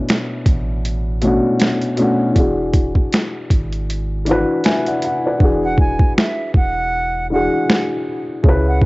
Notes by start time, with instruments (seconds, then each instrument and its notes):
Already playing: upright piano B2 A3 C#4 D4 E4
0.09 finger snap, snare, closed hi-hat
0.46 sub bass A1, kick, closed hi-hat
0.85 closed hi-hat
1.21 upright piano B2 A3 C#4, closed hi-hat
1.26 upright piano D4 F#4
1.60 finger snap, snare, closed hi-hat
1.82 closed hi-hat
1.97 upright piano B2 A3 C#4 D4, closed hi-hat
2.02 upright piano F#4
2.34 sub bass E1, upright piano E3 D4 F#4, kick, closed hi-hat
2.39 upright piano G#4
2.74 kick, closed hi-hat
2.95 kick
3.12 finger snap, snare, closed hi-hat
3.50 sub bass G#1, kick, closed hi-hat
3.73 closed hi-hat
3.90 closed hi-hat
4.25 upright piano E3 D4 F#4, closed hi-hat
4.31 upright piano B4
4.64 upright piano E5 G#5, finger snap, snare, closed hi-hat
4.86 upright piano D5 F#5, closed hi-hat
5.02 upright piano F#5, closed hi-hat
5.25 upright piano B4 D5
5.39 sub bass E1, upright piano E3 D4 F#4, kick
5.44 upright piano G#4
5.64 flute F#5
5.78 flute G#5, kick
5.99 kick
6.18 flute E5, finger snap, snare
6.54 sub bass E1, flute F#5, kick
7.30 upright piano E3 D4 F#4, flute F#5
7.35 upright piano G#4
7.70 finger snap, snare
8.43 sub bass C#2, upright piano C#3 C#4 E4, kick
8.48 upright piano B4
8.68 flute F#5
8.82 kick